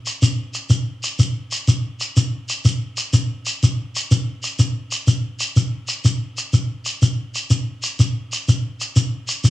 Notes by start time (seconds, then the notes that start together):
0.06 shekere
0.22 shekere
0.54 shekere
0.70 shekere
1.03 shekere
1.19 shekere
1.52 shekere
1.68 shekere
2.00 shekere
2.17 shekere
2.49 shekere
2.65 shekere
2.97 shekere
3.13 shekere
3.46 shekere
3.63 shekere
3.96 shekere
4.11 shekere
4.43 shekere
4.59 shekere
4.91 shekere
5.07 shekere
5.40 shekere
5.56 shekere
5.88 shekere
6.05 shekere
6.37 shekere
6.53 shekere
6.85 shekere
7.02 shekere
7.35 shekere
7.50 shekere
7.83 shekere
7.99 shekere
8.32 shekere
8.48 shekere
8.80 shekere
8.96 shekere
9.28 shekere
9.44 shekere